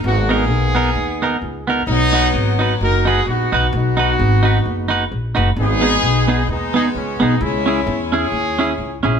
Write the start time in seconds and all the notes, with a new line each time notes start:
0.04 G#1 A#3 B3 F#4
0.29 B3 D#4 G#4 A#4
0.49 B1
0.75 B3 D#4 A#4
0.95 D#2
1.22 B3 D#4 A#4
1.41 C#2
1.67 B3 D#4 A#4
1.87 B1 F#3 B3 D#4
2.13 D#4 F#4 B4
2.34 G#1
2.59 D#4 F#4 B4
2.81 F#1 D#4 F#4 A#4
3.05 D#4 F#4 G#4 B4
3.26 A#1 B3 D#4 F#4
3.52 B1 D#4 F#4 B4
3.73 B1 B3 D#4 F#4
3.97 D#4 F#4 B4
4.19 G#1
4.43 D#4 F#4 B4
4.65 F#1
4.88 D#4 F#4 B4
5.11 A#1
5.35 F#1 D#4 F#4 B4
5.56 G#1 B3 D#4 G#4
5.81 B3 D#4 G#4
6.03 B1
6.28 B3 D#4 G#4
6.48 D#2 G#3 B3 D#4
6.74 B3 D#4 G#4
6.95 C#2 C#4
7.20 B1 B3 D#4 G#4
7.41 C#2 G#3 C#4 E4
7.66 C#4 E4 G#4
7.87 E2
8.12 C#4 E4 G#4
8.32 D#2
8.59 C#4 E4 G#4
8.78 C#2
9.03 A#1 C#4 E4 G#4